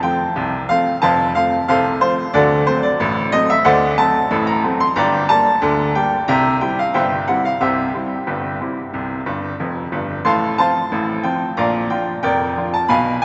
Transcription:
0.03 F3 A3 C4 G5
0.36 C2 C3
0.69 F3 A3 C4 F5
1.02 F1 F2 C5 F5 A5
1.35 F3 A3 C4 F5
1.68 C2 C3 A4 C5 F5
2.01 F3 A3 C4 C5
2.34 D2 D3 F#4 A4 D5
2.67 F#3 A3 C4 C5
2.83 D5
3.00 A1 A2
3.32 F#3 A3 C4 D#5
3.50 E5
3.65 D2 D3 C5 D5 F#5
3.98 F#3 A3 C4 A5
4.31 A1 A2
4.47 A#5
4.63 F#3 A3 C4
4.80 C6
4.96 G1 G2 D5 G5 A#5
5.29 G3 A#3 D4 A5
5.62 D2 D3
5.95 G3 A#3 D4 G5
6.28 C2 C3 E5 G5 A#5
6.61 G3 C4 E4 G5
6.79 F5
6.94 G1 G2 C5 E5 G5
7.28 G3 C4 E4 F#5
7.45 F5
7.61 C2 C3 G4 C5 E5
7.94 G3 C4 E4
8.27 G1 G2
8.61 G3 C4 E4
8.93 C2 C3
9.26 G1 G2
9.60 F1 F2
9.92 G1 G2
10.25 A1 A2 F5 A5 C6
10.58 F3 C4 F4 C5 F5 A5
10.92 A1 A2
11.23 F3 C4 F4 G5
11.57 A#1 A#2 D5 F5 A#5
11.90 F3 D4 F4 G5
12.23 F1 F2 A#4 D5 G5
12.57 F3 D4 F4
12.74 A5
12.88 B1 B2 F5 G#5 B5

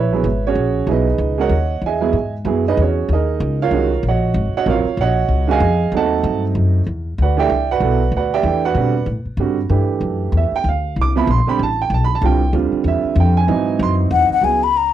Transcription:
Already playing: A#1 E4 B4 C#5 E5
0.13 F#3 B3 E4 G#4
0.24 G#1
0.47 C#4 F#4 G#4 C#5
0.55 A#1
0.87 B1 F#3 B3 E4 G#4
0.91 D#4 G#4 B4 D#5
1.18 C#2
1.38 G#3 C#4 F#4 A#4 C#5 D#5 F#5
1.49 D#2
1.82 E2
1.86 G#4 D#5 E5 G#5
2.01 F#3 B3 E4 G#4
2.13 G#2
2.45 F#2 F#3 B3 E4 G#4
2.68 D#4 G#4 B4 D#5
2.77 E2
2.82 C#4 F#4 G#4 C#5
3.09 D#2
3.13 D#4 G#4 A#4 D#5
3.40 C#2
3.62 F4 A#4 C#5 F5
3.71 C2 D#3 G#3 C#4 F#4
4.03 A#1
4.08 F#4 C#5 D#5 F#5
4.34 G#1
4.53 F#4 C#5 D#5 F#5, muted upright bass stroke
4.66 A1 F#3 C4 F4 A#4 F5
4.71 F4 C#5
4.85 muted upright bass stroke
4.97 A#1 F#5
5.01 F#4 C#5 D#5
5.29 C#2
5.47 D#3 G#3 C#4 F#4 G#4 G#5
5.51 D#5 F5
5.60 F2
5.92 D#2 F#3 A3 C4 D#4
5.97 A4 D#5 F#5 A5
6.23 G2
6.55 F#2
6.86 E2
7.18 D2 F#5
7.22 F#4 B4 D5
7.37 E3 A3 D4 G4 D5 E5 G5
7.49 C2
7.71 F#4 B4 D5 F#5
7.80 B1 F#3 B3 E4 A4
8.12 D2
8.17 F#4 B4 D5 F#5
8.34 G4 D5 E5 G5
8.43 E2 E3 A3 D4 G4
8.65 F#4 B4 D5 F#5
8.75 B2 D3 G3 C4 F#4
9.06 A2
9.25 muted upright bass stroke
9.37 G2 D3 G3 C4 F#4
9.70 G2 E3 A3 D4 G4
10.01 F#2
10.32 E2
10.37 E5
10.52 muted upright bass stroke
10.56 G5
10.64 D2
10.69 F5
10.96 C2
11.02 D6
11.15 C3 F3 B3 E4 B5
11.27 A#1 C6
11.47 D3 G3 C4 G4 B5, muted upright bass stroke
11.59 A1 A5
11.82 G5
11.90 B1
11.94 A5
12.04 B5
12.15 A5
12.22 C2 D3 G3 C4 F4
12.26 G5
12.53 D2 D3 G3 C4 F4
12.72 muted upright bass stroke
12.84 E2 E5
13.04 muted upright bass stroke
13.16 F2
13.20 G5
13.37 G#5
13.47 G#2 E3 F#3 C4 D#4
13.79 F#2 C6
14.11 E2 F#5
14.30 F#5, muted upright bass stroke
14.41 C#2 F#3 B3 E4 G#4 G#5
14.63 B5
14.77 A#5

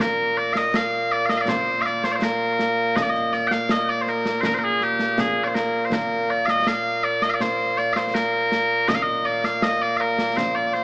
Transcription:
Already playing: A#2 A#3
0.00 A#4, concert bass drum, snare
0.37 D5
0.53 D#5 F5, snare
0.74 F5, snare
1.12 D5
1.26 D#5 F5, snare
1.37 D5 F5
1.48 C5, concert bass drum, snare
1.82 F5, snare
1.86 D5
2.04 C5, snare
2.12 C5 D5
2.22 A#4, snare
2.59 snare
2.96 D#5, concert bass drum, snare
3.03 D5
3.10 D#5
3.15 snare
3.33 D5, snare
3.47 G5, snare
3.52 F5
3.69 D#5, snare
3.89 D5
4.02 C5
4.07 A#4, snare
4.25 snare
4.41 A#4 C5, concert bass drum, snare
4.54 C5
4.58 A#4
4.64 G#4
4.81 G4, snare
4.99 snare
5.18 G#4, concert bass drum, snare
5.44 C5 D5
5.54 A#4, snare
5.85 C5
5.92 A#4, concert bass drum, snare
6.30 D5
6.46 D#5 F5, snare
6.67 F5, snare
7.04 D5
7.22 D#5, snare
7.30 F5
7.34 D5
7.40 C5, concert bass drum, snare
7.78 D5, snare
7.93 C5 F5, snare
8.07 C5
8.14 A#4, snare
8.52 snare
8.88 D#5, concert bass drum, snare
8.95 F5
9.02 D#5
9.25 D5
9.44 F5, snare
9.62 D#5, snare
9.82 D5
9.97 A#4 F5
10.18 snare
10.37 C5, concert bass drum, snare
10.55 D5
10.66 D5
10.73 C5, snare

